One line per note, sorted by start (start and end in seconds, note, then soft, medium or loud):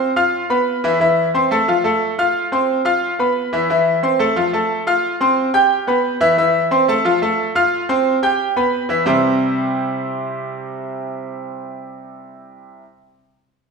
0.00 0.10 C4 medium
0.00 0.11 C5 medium
0.00 0.11 C6 medium
0.16 0.44 F4 medium
0.16 0.44 F5 medium
0.16 0.44 F6 medium
0.50 0.77 B3 medium
0.50 0.78 B4 medium
0.50 0.78 B5 medium
0.84 0.98 E3 loud
0.84 0.98 E4 loud
0.84 0.98 E5 medium
1.00 1.28 E3 medium
1.00 1.28 E4 medium
1.00 1.28 E5 medium
1.34 1.48 C4 medium
1.34 1.48 C5 medium
1.34 1.48 C6 medium
1.51 1.65 A3 medium
1.51 1.65 A4 medium
1.51 1.65 A5 medium
1.68 1.82 F3 medium
1.68 1.82 F4 medium
1.68 1.82 F5 medium
1.84 2.12 A3 medium
1.84 2.12 A4 medium
1.84 2.12 A5 medium
2.19 2.46 F4 medium
2.19 2.46 F5 medium
2.19 2.46 F6 medium
2.52 2.79 C4 medium
2.52 2.80 C5 medium
2.52 2.80 C6 medium
2.85 3.13 F4 medium
2.85 3.13 F5 medium
2.85 3.13 F6 medium
3.19 3.46 B3 medium
3.19 3.47 B4 medium
3.19 3.47 B5 medium
3.53 3.66 E3 medium
3.53 3.67 E4 medium
3.53 3.67 E5 medium
3.70 3.97 E3 medium
3.70 3.97 E4 medium
3.70 3.97 E5 medium
4.03 4.17 C4 medium
4.03 4.17 C5 medium
4.03 4.17 C6 medium
4.19 4.33 A3 medium
4.19 4.33 A4 medium
4.19 4.34 A5 medium
4.36 4.50 F3 medium
4.36 4.50 F4 medium
4.36 4.50 F5 medium
4.53 4.81 A3 medium
4.53 4.81 A4 medium
4.53 4.81 A5 medium
4.87 5.14 F4 medium
4.87 5.14 F5 medium
4.87 5.15 F6 medium
5.21 5.48 C4 medium
5.21 5.48 C5 medium
5.21 5.48 C6 medium
5.54 5.81 G4 medium
5.54 5.81 G5 medium
5.54 5.82 G6 medium
5.87 6.15 B3 medium
5.87 6.15 B4 medium
5.87 6.15 B5 medium
6.21 6.34 E3 loud
6.21 6.35 E4 loud
6.21 6.35 E5 loud
6.38 6.65 E3 medium
6.38 6.65 E4 medium
6.38 6.66 E5 medium
6.71 6.85 C4 medium
6.71 6.85 C5 medium
6.71 6.85 C6 medium
6.88 7.02 A3 medium
6.88 7.02 A4 medium
6.88 7.02 A5 medium
7.05 7.19 F3 medium
7.05 7.19 F4 medium
7.05 7.19 F5 medium
7.22 7.49 A3 medium
7.22 7.50 A4 medium
7.22 7.50 A5 medium
7.55 7.83 F4 medium
7.55 7.83 F5 medium
7.55 7.83 F6 medium
7.89 8.16 C4 medium
7.89 8.17 C5 medium
7.89 8.17 C6 medium
8.23 8.50 G4 medium
8.23 8.50 G5 medium
8.23 8.50 G6 medium
8.56 8.84 B3 medium
8.56 8.84 B4 medium
8.56 8.84 B5 medium
8.89 9.03 E3 medium
8.89 9.03 E4 medium
8.89 9.03 E5 medium
9.06 12.81 C3 medium
9.06 12.81 G3 medium
9.06 12.82 C4 medium
9.06 12.82 E4 medium
9.06 12.82 G4 medium
9.06 12.82 C5 loud